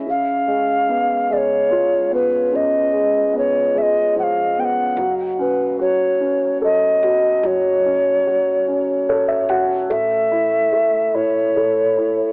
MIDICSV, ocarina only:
0, 0, Header, 1, 2, 480
1, 0, Start_track
1, 0, Key_signature, 4, "minor"
1, 0, Tempo, 821918
1, 28, Time_signature, 6, 3, 24, 8
1, 7198, End_track
2, 0, Start_track
2, 0, Title_t, "Ocarina"
2, 0, Program_c, 0, 79
2, 57, Note_on_c, 0, 77, 96
2, 775, Note_on_c, 0, 74, 77
2, 784, Note_off_c, 0, 77, 0
2, 804, Note_on_c, 0, 73, 84
2, 810, Note_off_c, 0, 74, 0
2, 1240, Note_off_c, 0, 73, 0
2, 1253, Note_on_c, 0, 71, 79
2, 1494, Note_on_c, 0, 75, 90
2, 1503, Note_off_c, 0, 71, 0
2, 1959, Note_off_c, 0, 75, 0
2, 1974, Note_on_c, 0, 73, 71
2, 2208, Note_on_c, 0, 76, 74
2, 2216, Note_off_c, 0, 73, 0
2, 2231, Note_on_c, 0, 75, 81
2, 2237, Note_off_c, 0, 76, 0
2, 2436, Note_off_c, 0, 75, 0
2, 2446, Note_on_c, 0, 78, 76
2, 2472, Note_on_c, 0, 77, 83
2, 2478, Note_off_c, 0, 78, 0
2, 2686, Note_on_c, 0, 79, 77
2, 2694, Note_off_c, 0, 77, 0
2, 2715, Note_on_c, 0, 78, 83
2, 2720, Note_off_c, 0, 79, 0
2, 2996, Note_off_c, 0, 78, 0
2, 3159, Note_on_c, 0, 71, 73
2, 3375, Note_off_c, 0, 71, 0
2, 3394, Note_on_c, 0, 73, 80
2, 3845, Note_off_c, 0, 73, 0
2, 3877, Note_on_c, 0, 75, 79
2, 4359, Note_on_c, 0, 73, 84
2, 4368, Note_off_c, 0, 75, 0
2, 5311, Note_off_c, 0, 73, 0
2, 5792, Note_on_c, 0, 76, 95
2, 6513, Note_on_c, 0, 73, 83
2, 6521, Note_off_c, 0, 76, 0
2, 7198, Note_off_c, 0, 73, 0
2, 7198, End_track
0, 0, End_of_file